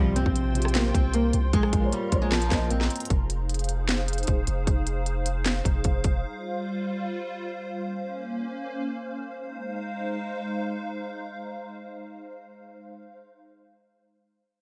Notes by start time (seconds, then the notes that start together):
Already playing: C2 G2 C3 F3 G3 C4 F4 C5 G5 C6
0.00 G4
0.16 C4, closed hi-hat
0.23 A#1 C3 C4 F4, kick
0.29 G4
0.36 closed hi-hat
0.52 C3 C4 F4, closed hi-hat
0.58 G4, closed hi-hat
0.65 cross-stick, closed hi-hat
0.75 A#3, snare, clap, closed hi-hat
0.94 C2 C4, kick, closed hi-hat
1.14 A#3, closed hi-hat
1.33 C2, closed hi-hat
1.53 A#1 G#3 F4 A#4 A#5, kick, closed hi-hat
1.63 cross-stick
1.73 A#1, kick, closed hi-hat
1.80 A#3 F4 C5
1.86 C#5
1.92 G3, closed hi-hat
2.09 A#1 A#3 F4 C5, kick, closed hi-hat
2.15 C#5
2.22 G#3
2.32 F3, snare, clap, closed hi-hat
2.42 closed hi-hat
2.48 A#1 A#3 F4 C5, kick, snare, clap, closed hi-hat
2.54 D#5
2.71 C4, closed hi-hat
2.81 snare
2.90 closed hi-hat, open hi-hat
2.96 closed hi-hat
3.00 closed hi-hat
3.05 closed hi-hat
3.10 F1 D#4 G#4 C5 F5, kick, closed hi-hat
3.30 closed hi-hat
3.49 closed hi-hat
3.54 closed hi-hat
3.59 closed hi-hat
3.64 closed hi-hat
3.69 closed hi-hat
3.89 snare, clap, closed hi-hat
4.08 closed hi-hat
4.13 closed hi-hat
4.18 closed hi-hat
4.23 closed hi-hat
4.27 D#1, kick, closed hi-hat
4.47 F1, closed hi-hat
4.67 F1, kick, closed hi-hat
4.87 closed hi-hat
5.06 closed hi-hat
5.26 closed hi-hat
5.46 snare, clap, closed hi-hat
5.65 F1, kick, closed hi-hat
5.84 F1, kick, closed hi-hat
6.04 F1, kick, closed hi-hat
6.24 G3 F4
7.81 A#3 C#4
9.38 G#3 D#4 C5 F5